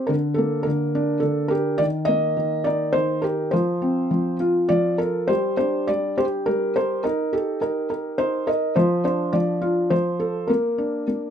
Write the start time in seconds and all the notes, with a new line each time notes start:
0.07 D3 A#4
0.34 A#3 A4
0.63 D3 A#4
0.95 D4
1.20 D3 A4
1.48 G4 A#4
1.78 D#3 D5
2.05 A#3 D#5
2.37 D#3
2.64 D#4 D5
2.93 D#3 C5
3.22 G4 A#4
3.51 F3 C5
3.82 C4
4.11 F3
4.40 F4
4.69 F3 D5
4.98 A4 A#4
5.28 G3 C5
5.57 D4 C5
5.87 G3 D5
6.18 G4 C5
6.46 G3 A#4
6.76 A#4 C5
7.04 D#4 A#4
7.33 G4 A4
7.61 D#4 A#4
7.90 A#4
8.18 D#4 C5
8.47 A#4 D#5
8.76 F3 C5
9.04 D4 C5
9.33 F3 D5
9.62 F4
9.90 F3 C5
10.20 A4
10.47 A#3 A#4
10.78 D4
11.08 A#3